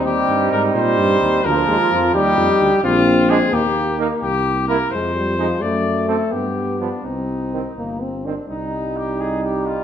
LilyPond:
<<
  \new Staff \with { instrumentName = "Trumpet" } { \time 6/8 \key c \minor \tempo 4. = 85 g'4 bes'8 c''4. | bes'4. g'4. | f'4 aes'8 g'4 r8 | g'4 bes'8 c''4. |
d''4 a'8 g'4 d'8 | ees'2~ ees'8 r8 | ees'4 g'8 aes'8 g'8 f'8 | }
  \new Staff \with { instrumentName = "Flugelhorn" } { \time 6/8 \key c \minor ees'2. | f'4. ees'4. | r4 d'16 r4 r16 ees'16 r16 | r4 e'16 r4 r16 ees'16 r16 |
r4 c'16 r4 r16 b16 r16 | r4 c'16 r4 r16 c'16 r16 | ees'2. | }
  \new Staff \with { instrumentName = "French horn" } { \time 6/8 \key c \minor c'2. | bes8 aes8 f8 g4. | c'4. bes4.~ | bes4 r8 aes8 g8 f8 |
a4. b4. | c'4. bes8 c'8 d'8 | ees'2. | }
  \new Staff \with { instrumentName = "Trombone" } { \clef bass \time 6/8 \key c \minor g4. g4. | f4. g4. | r4 aes16 r4 r16 bes16 r16 | r4 bes16 r4 r16 aes16 r16 |
r4 a16 r4 r16 f16 r16 | r4 ees16 r4 r16 ees16 r16 | g2. | }
  \new Staff \with { instrumentName = "Bass trombone" } { \clef bass \time 6/8 \key c \minor ees,8 g,8 aes,8 bes,8 g,8 ees,8 | d,8 ees,8 f,8 ees,8 f,8 d,8 | bes,,4. ees,4. | c,4. f,4. |
fis,4. g,4. | c,4. g,,4. | c,2. | }
>>